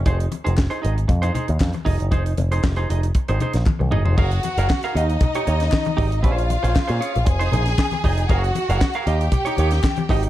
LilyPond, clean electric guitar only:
\new Staff \with { instrumentName = "Clean electric guitar" } { \time 4/4 \key f \phrygian \tempo 4 = 117 <ees' aes' c''>8 r16 <ees' aes' c''>16 r16 <ees' aes' c''>16 <ees' aes' ees''>16 r8 <ees' aes' c''>16 <ees' aes' c''>16 r8. <ees' aes' ees''>8 | <ees' aes' c''>8 r16 <ees' aes' c''>16 r16 <ees' aes' c''>16 <ees' aes' ees''>16 r8 <ees' aes' c''>16 <ees' aes' c''>16 r8. <ees' aes' ees''>16 <ees' aes' c''>16 | <aes' bes' f''>8 r16 <aes' bes' f''>16 r16 <aes' bes' f''>16 <ees' g' ees''>16 r8 <ees' g' des''>16 <ees' g' des''>16 r8. <ees' g' ees''>8 | <des' aes' c''>8 r16 <des' aes' c''>16 r16 <des' aes' c''>16 <des' aes' des''>16 r8 <ees' aes' c''>16 <ees' aes' c''>16 r8. <ees' aes' ees''>8 |
<aes' bes' f''>8 r16 <aes' bes' f''>16 r16 <aes' bes' f''>16 <ees' g' ees''>16 r8 <ees' g' des''>16 <ees' g' des''>16 r8. <ees' g' ees''>8 | }